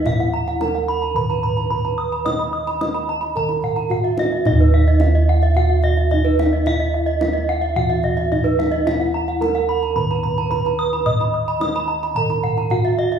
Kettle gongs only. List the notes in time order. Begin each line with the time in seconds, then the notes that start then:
Already playing: E3
0.06 E4
0.60 E4
1.15 D#3
1.70 E4
2.25 D#5
2.81 E4
3.37 D#3
3.92 E4
4.47 D#4
4.52 D#2
6.12 E4
6.66 E4
7.21 E4
7.76 E3
8.31 E4
8.86 E4
9.40 E4
9.96 D#3
10.51 E4
11.06 D#5
11.60 E4
12.15 D#3
12.71 E4